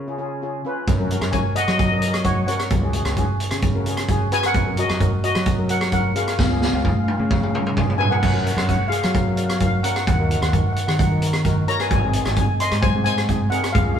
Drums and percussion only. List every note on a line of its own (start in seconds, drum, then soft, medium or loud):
0.88 kick loud
0.88 closed hi-hat medium
1.11 closed hi-hat medium
1.21 cross-stick medium
1.21 closed hi-hat medium
1.32 kick medium
1.32 closed hi-hat medium
1.56 closed hi-hat medium
1.68 cross-stick medium
1.68 closed hi-hat medium
1.79 kick loud
1.79 closed hi-hat medium
2.02 closed hi-hat medium
2.14 cross-stick medium
2.14 closed hi-hat medium
2.24 kick medium
2.24 closed hi-hat medium
2.48 closed hi-hat medium
2.59 cross-stick medium
2.59 closed hi-hat medium
2.70 kick loud
2.70 closed hi-hat medium
2.93 closed hi-hat medium
3.05 cross-stick medium
3.05 closed hi-hat medium
3.16 kick medium
3.16 closed hi-hat medium
3.40 closed hi-hat medium
3.51 cross-stick medium
3.51 closed hi-hat medium
3.62 kick loud
3.62 closed hi-hat medium
3.86 closed hi-hat medium
3.97 cross-stick medium
3.97 closed hi-hat medium
4.08 kick medium
4.08 closed hi-hat medium
4.32 closed hi-hat medium
4.43 cross-stick medium
4.43 closed hi-hat medium
4.54 kick loud
4.54 closed hi-hat medium
4.77 closed hi-hat medium
4.89 cross-stick medium
4.89 closed hi-hat medium
5.00 kick medium
5.00 closed hi-hat medium
5.24 closed hi-hat medium
5.35 cross-stick medium
5.35 closed hi-hat medium
5.46 kick loud
5.46 closed hi-hat medium
5.69 closed hi-hat medium
5.81 cross-stick medium
5.81 closed hi-hat medium
5.92 kick medium
5.92 closed hi-hat medium
6.16 closed hi-hat medium
6.28 cross-stick medium
6.28 closed hi-hat medium
6.39 kick loud
6.39 snare medium
6.62 snare medium
6.85 kick medium
6.85 high tom medium
7.08 high tom medium
7.31 kick loud
7.31 mid tom medium
7.43 mid tom medium
7.55 mid tom medium
7.67 mid tom medium
7.77 kick medium
7.77 mid tom loud
7.90 floor tom medium
8.00 floor tom loud
8.12 floor tom loud
8.23 kick loud
8.23 crash loud
8.47 closed hi-hat medium
8.58 cross-stick medium
8.58 closed hi-hat medium
8.69 kick medium
8.69 closed hi-hat medium
8.92 closed hi-hat medium
9.03 cross-stick medium
9.03 closed hi-hat medium
9.14 kick loud
9.14 closed hi-hat medium
9.37 closed hi-hat medium
9.49 cross-stick medium
9.49 closed hi-hat medium
9.60 kick medium
9.60 closed hi-hat medium
9.84 closed hi-hat loud
9.96 cross-stick medium
9.96 closed hi-hat medium
10.07 kick loud
10.07 closed hi-hat medium
10.31 closed hi-hat medium
10.42 cross-stick medium
10.42 closed hi-hat medium
10.53 kick medium
10.53 closed hi-hat medium
10.76 closed hi-hat medium
10.88 cross-stick medium
10.88 closed hi-hat medium
10.99 kick loud
10.99 closed hi-hat medium
11.22 closed hi-hat medium
11.33 cross-stick medium
11.33 closed hi-hat medium
11.45 kick medium
11.45 closed hi-hat medium
11.68 closed hi-hat medium
11.80 cross-stick medium
11.80 closed hi-hat medium
11.91 kick loud
11.91 closed hi-hat medium
12.13 closed hi-hat medium
12.25 cross-stick medium
12.25 closed hi-hat medium
12.36 kick medium
12.36 closed hi-hat medium
12.60 closed hi-hat medium
12.71 cross-stick medium
12.71 closed hi-hat medium
12.82 kick loud
12.82 closed hi-hat medium
13.06 closed hi-hat medium
13.18 cross-stick medium
13.18 closed hi-hat medium
13.29 kick medium
13.29 closed hi-hat medium
13.52 closed hi-hat medium
13.64 cross-stick medium
13.64 closed hi-hat medium
13.75 kick loud
13.75 closed hi-hat medium